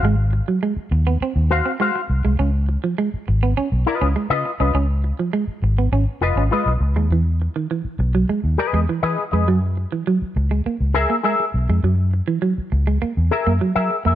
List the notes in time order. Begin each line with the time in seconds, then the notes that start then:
0.03 G#1 G#3
0.33 muted clean electric guitar stroke
0.48 F#3
0.63 G#3
0.76 muted fingered electric bass stroke
0.91 D#2, muted clean electric guitar stroke
1.07 B3
1.21 C4, muted fingered electric bass stroke
1.36 D#2
1.51 F#4 C5 F5, muted clean electric guitar stroke
1.66 C4
1.80 G#3 F#4 C5 F5
1.96 muted clean electric guitar stroke
2.10 C2
2.25 C2 G#3
2.39 C#2 C#4
2.69 muted clean electric guitar stroke
2.84 F3
2.98 G#3
3.14 muted fingered electric bass stroke
3.28 G#1, muted clean electric guitar stroke
3.43 B3
3.57 C#4, muted fingered electric bass stroke
3.72 B1
3.86 F4 B4 D#5, muted clean electric guitar stroke
4.01 C#2 C#4
4.16 G#3
4.30 C#3 F4 B4 D#5
4.45 muted clean electric guitar stroke
4.60 C2 C#4 F4 B4 D#5
4.75 C#2 C#4
5.04 muted clean electric guitar stroke
5.19 F3
5.33 G#3
5.47 muted fingered electric bass stroke
5.62 G#1, muted clean electric guitar stroke
5.78 B3
5.92 G#1 C#4
6.21 F1 F4 B4 D#5, muted clean electric guitar stroke
6.36 G#1 C#4
6.51 G#3 F4 B4 D#5
6.66 B1, muted clean electric guitar stroke
6.81 C#2
6.96 D#2 G#3
7.10 E2 E3
7.42 muted clean electric guitar stroke
7.56 D#3
7.71 E3
7.85 muted fingered electric bass stroke
7.99 B1, muted clean electric guitar stroke
8.15 F#3
8.29 G#3
8.44 D#2
8.58 G#4 B4 D#5, muted clean electric guitar stroke
8.73 E2 G#3
8.89 E3
9.03 E3 G#4 B4 D#5
9.18 muted clean electric guitar stroke
9.32 F2 G#3 G#4 B4 D#5
9.48 F#2 F#3
9.77 muted clean electric guitar stroke
9.92 E3
10.07 F#3
10.22 muted fingered electric bass stroke
10.36 C#2, muted clean electric guitar stroke
10.51 G#3
10.66 A#3, muted fingered electric bass stroke
10.81 C#2
10.94 G#4 A#4 E5, muted clean electric guitar stroke
11.10 A#3
11.23 G#3 G#4 A#4 E5
11.40 muted clean electric guitar stroke
11.54 B1
11.69 F2 G#3
11.83 F#2 F#3
12.14 muted clean electric guitar stroke
12.28 E3
12.42 F#3
12.58 muted fingered electric bass stroke
12.72 C#2, muted clean electric guitar stroke
12.87 G#3
13.02 A#3, muted fingered electric bass stroke
13.17 E2
13.31 G#4 A#4 E5, muted clean electric guitar stroke
13.47 F#2 A#3
13.61 F#3
13.76 F#3 G#4 A#4 E5
13.91 muted clean electric guitar stroke
14.05 F2 A#3 G#4 A#4 E5